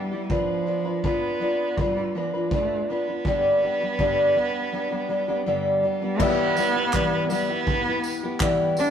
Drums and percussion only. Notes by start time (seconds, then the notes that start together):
0.30 kick
1.04 kick
1.78 kick
2.51 kick
3.25 kick
3.99 kick
6.20 kick, crash
6.57 tambourine
6.93 kick, clap
7.30 tambourine
7.67 kick
8.04 tambourine
8.40 kick, clap
8.77 tambourine